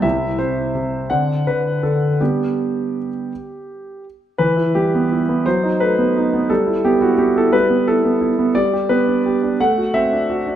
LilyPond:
<<
  \new Staff \with { instrumentName = "Grand piano" } { \time 6/8 \key g \major \tempo 4. = 57 << { e''8 c''4 fis''8 b'8 a'8 | g'2~ g'8 r8 | \key e \minor b'8 g'4 c''8 b'4 | a'8 g'16 fis'16 g'16 a'16 b'8 a'4 |
d''8 b'4 fis''8 e''4 | } \\ { <c' e'>4. <c' d'>4. | r2. | r2. | r2. |
r2. | } >> }
  \new Staff \with { instrumentName = "Grand piano" } { \time 6/8 \key g \major <c, c>8 c8 c8 d8 d8 d8 | <g b d'>4. r4. | \key e \minor e16 e'16 g16 b16 e'16 b16 fis16 dis'16 a16 b16 dis'16 b16 | g16 e'16 b16 e'16 b16 e'16 g16 b16 e'16 b16 e'16 b16 |
g16 g'16 b16 d'16 g'16 d'16 a16 fis'16 c'16 d'16 fis'16 d'16 | }
>>